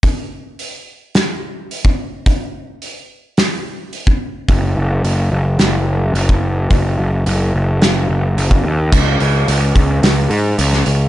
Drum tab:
CC |----------------|----------------|----------------|----------------|
HH |o---o---o---o---|o---o---o---o---|o---o---o---o---|o---o---o---o---|
SD |--------o-------|--------o-------|--------o-------|--------o-------|
BD |o------------o--|o------------o--|o------------o--|o------------o--|

CC |x---------------|
HH |--o-o-o-o-o-o-o-|
SD |--------o----o--|
BD |o-----o---------|